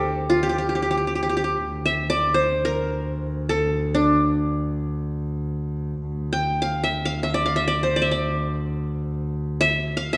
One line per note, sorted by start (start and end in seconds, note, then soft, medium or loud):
0.00 1.61 D2 medium
0.00 0.42 G4 medium
0.00 0.91 A4 medium
0.00 0.49 C5 medium
0.00 0.31 D5 medium
0.30 1.64 F4 medium
0.43 0.49 G4 medium
0.49 0.58 G4 soft
0.58 0.69 G4 soft
0.69 0.75 G4 soft
0.75 0.82 G4 soft
0.82 0.90 G4 soft
0.91 0.97 G4 medium
0.97 1.07 G4 soft
1.07 1.15 G4 soft
1.15 1.22 G4 soft
1.23 1.29 G4 medium
1.29 1.36 G4 soft
1.37 1.44 G4 medium
1.44 2.70 G4 soft
1.62 6.00 D2 medium
1.86 2.78 E5 medium
2.10 3.08 D5 medium
2.34 3.40 C5 medium
2.65 3.78 A#4 medium
3.49 4.66 A4 medium
3.95 5.44 D4 medium
6.01 10.17 D2 medium
6.33 7.16 G5 medium
6.62 6.90 F5 medium
6.84 7.11 E5 medium
7.05 7.29 F5 medium
7.23 7.52 E5 medium
7.34 7.67 D5 medium
7.46 7.62 F5 medium
7.56 8.01 E5 medium
7.68 7.96 D5 medium
7.83 8.89 C5 medium
7.96 8.11 D5 medium
8.02 8.95 E5 medium
8.11 9.10 D5 medium
9.61 10.03 E5 medium
9.97 10.17 F5 medium
10.13 10.17 E5 medium